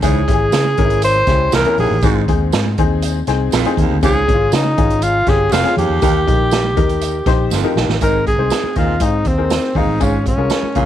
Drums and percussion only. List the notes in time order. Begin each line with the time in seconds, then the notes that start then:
0.02 kick, closed hi-hat, tambourine, low conga
0.15 muted conga
0.28 kick, closed hi-hat, high conga
0.52 snare, closed hi-hat, tambourine
0.64 muted conga, high conga
0.77 kick, closed hi-hat, low conga
0.90 closed hi-hat
1.02 closed hi-hat, tambourine, muted conga
1.16 muted conga
1.27 kick, snare, closed hi-hat
1.52 snare, closed hi-hat, tambourine, muted conga, high conga
1.64 closed hi-hat, muted conga
1.78 open hi-hat, high conga, low conga
2.02 kick, closed hi-hat, tambourine, muted conga, low conga
2.28 kick, closed hi-hat, high conga
2.52 snare, closed hi-hat, tambourine
2.66 muted conga, high conga
2.78 kick, closed hi-hat, low conga
3.02 closed hi-hat, tambourine, muted conga
3.15 muted conga
3.27 snare, closed hi-hat
3.52 snare, closed hi-hat, tambourine, high conga
3.65 closed hi-hat, muted conga
3.77 kick, closed hi-hat, high conga, low conga
4.03 kick, closed hi-hat, tambourine, muted conga, low conga
4.15 muted conga
4.28 kick, closed hi-hat, high conga
4.52 snare, closed hi-hat, tambourine, muted conga
4.65 muted conga, high conga
4.77 kick, closed hi-hat, low conga
4.90 closed hi-hat
5.02 closed hi-hat, tambourine, muted conga
5.27 kick, snare, closed hi-hat
5.52 snare, closed hi-hat, tambourine, high conga
5.64 snare, closed hi-hat, muted conga
5.76 closed hi-hat, high conga, low conga
6.02 kick, closed hi-hat, tambourine, low conga
6.15 muted conga
6.27 kick, closed hi-hat, high conga
6.51 snare, closed hi-hat, tambourine, muted conga
6.64 high conga
6.76 kick, closed hi-hat, low conga
6.89 closed hi-hat
7.01 closed hi-hat, tambourine, muted conga
7.26 kick, snare, closed hi-hat
7.51 snare, tambourine, muted conga, high conga
7.63 muted conga
7.76 snare, high conga, low conga
7.89 snare
8.01 kick, closed hi-hat, tambourine, muted conga
8.27 kick, closed hi-hat, high conga
8.50 snare, closed hi-hat, tambourine
8.63 high conga
8.76 kick, closed hi-hat, low conga
9.00 kick, closed hi-hat, tambourine
9.25 kick, closed hi-hat
9.50 snare, closed hi-hat, tambourine
9.63 snare, muted conga
9.75 kick, open hi-hat, high conga, low conga
10.00 kick, closed hi-hat, tambourine, muted conga
10.26 kick, closed hi-hat, high conga
10.50 snare, closed hi-hat, tambourine, muted conga
10.63 muted conga, high conga
10.75 kick, closed hi-hat, low conga